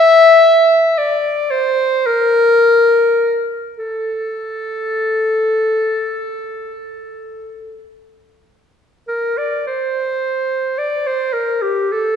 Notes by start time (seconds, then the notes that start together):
Already playing: E5
0.98 D5
1.51 C5
2.06 A#4
3.78 A4
9.08 A#4
9.38 D5
9.67 C5
10.78 D5
11.07 C5
11.33 A#4
11.62 G4
11.92 A4